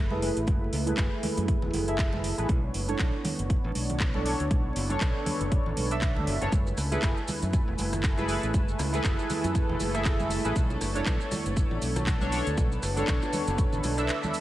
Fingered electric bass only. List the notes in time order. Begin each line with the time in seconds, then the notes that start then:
Already playing: F#1
0.37 A1
0.47 F#1
0.73 C#2
0.98 F#1
1.38 F#2
1.63 E1
1.74 F#1
2.38 A1
2.49 B1
2.74 F#1
2.99 B1
3.39 F#1
3.64 A1
3.75 B1
4.40 D2
4.51 B1
4.76 F#1
5.01 B1
5.41 F#1
5.66 A1
5.77 B1
6.16 D2
6.27 F#1
6.42 F#1
6.52 F#1
6.78 C#2
7.03 F#1
7.42 F#2
7.68 E1
7.79 F#1
8.43 A1
8.79 C#2
9.05 F#1
9.44 F#2
9.69 E1
9.80 F#1
10.45 A1
10.56 B1
10.81 F#1
11.06 B1
11.46 F#1
11.71 A1
11.82 B1
12.47 D2
12.58 B1
12.83 F#1
13.08 B1
13.48 F#1
13.73 A1
13.84 B1